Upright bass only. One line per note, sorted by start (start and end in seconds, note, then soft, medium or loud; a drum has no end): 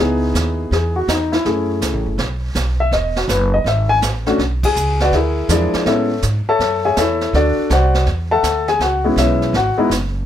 0.00 0.33 C#2 medium
0.34 0.70 D#2 medium
0.71 1.07 E2 medium
1.08 1.43 E2 medium
1.45 1.81 F#2 medium
1.82 1.93 C#2 medium
1.93 2.05 A1 soft
2.06 2.17 F#1 medium
2.18 2.54 B1 medium
2.55 2.91 B1 medium
2.91 3.27 E1 medium
3.28 3.64 F#1 medium
3.64 4.00 G#1 medium
4.02 4.38 A1 medium
4.38 4.74 B1 medium
4.75 5.11 C#2 medium
5.12 5.48 D2 medium
5.48 5.71 E2 medium
5.74 muted upright bass stroke soft
5.86 6.22 A2 medium
6.23 6.45 G#2 medium
6.47 muted upright bass stroke soft
6.59 6.95 F#2 medium
6.97 7.32 E2 medium
7.33 7.56 D2 medium
7.58 muted upright bass stroke soft
7.70 8.05 C2 medium
8.06 8.42 E2 medium
8.43 8.79 D2 medium
8.79 9.15 C#2 medium
9.16 9.52 B1 medium
9.53 9.76 G#1 medium
9.78 muted upright bass stroke soft
9.89 10.25 F#1 medium